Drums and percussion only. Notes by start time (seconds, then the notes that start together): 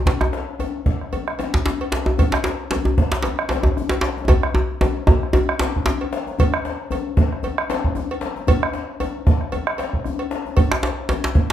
0.06 bombo low, cowbell, djembe slap, djembe bass
0.21 bombo rim, djembe slap, djembe tone
0.33 djembe slap
0.59 cowbell, djembe tone, djembe bass
0.86 bombo low, djembe slap
1.01 bombo rim
1.13 cowbell, djembe slap, djembe bass
1.28 bombo rim
1.39 cowbell, djembe slap, djembe tone
1.54 bombo low, djembe slap
1.66 bombo rim, djembe slap, djembe bass
1.81 cowbell
1.92 djembe slap
2.06 djembe tone
2.18 bombo low, cowbell, djembe bass
2.32 djembe slap
2.34 bombo rim, djembe slap
2.44 djembe slap
2.71 cowbell, djembe slap, djembe tone, djembe bass
2.85 djembe tone
2.98 bombo low, djembe slap
3.12 bombo rim, djembe slap
3.23 cowbell, djembe slap, djembe bass
3.39 bombo rim
3.49 cowbell, djembe slap
3.51 djembe slap, djembe tone
3.63 bombo low, djembe tone
3.77 bombo rim, djembe bass
3.89 cowbell, djembe slap
4.01 djembe slap
4.03 djembe slap
4.17 djembe tone
4.28 bombo low, cowbell, djembe slap, djembe tone, djembe bass
4.43 bombo rim
4.55 djembe tone
4.70 djembe slap
4.81 cowbell, djembe tone, djembe bass
5.07 bombo low, djembe slap, djembe tone
5.22 bombo rim, djembe slap
5.33 cowbell, djembe tone, djembe bass
5.48 bombo rim, djembe slap
5.59 bombo rim, cowbell, djembe slap, djembe tone
5.76 bombo low
5.86 djembe slap, djembe bass
6.01 cowbell
6.13 djembe slap
6.27 djembe tone
6.39 bombo low, cowbell, djembe bass
6.54 bombo rim, djembe slap
6.65 djembe slap
6.91 cowbell, djembe tone, djembe bass
7.17 bombo low, djembe slap
7.32 bombo rim
7.43 cowbell, djembe slap, djembe bass
7.58 bombo rim
7.70 cowbell, djembe slap, djembe tone
7.84 bombo low
7.95 bombo rim, djembe bass
8.11 cowbell
8.21 djembe slap
8.36 djembe tone
8.47 bombo low, cowbell, djembe bass
8.62 bombo rim, djembe slap
8.73 djembe slap
9.00 cowbell, djembe tone, djembe bass
9.27 bombo low, djembe slap
9.41 bombo rim
9.52 cowbell, djembe slap, djembe bass
9.67 bombo rim
9.78 cowbell, djembe slap
9.93 bombo low
10.04 bombo rim, djembe bass
10.19 cowbell
10.31 djembe slap
10.45 djembe tone
10.57 bombo low, cowbell, djembe bass
10.71 bombo rim, djembe slap
10.83 djembe slap
11.09 cowbell, djembe slap, djembe tone, djembe bass
11.24 djembe slap
11.35 bombo low, djembe slap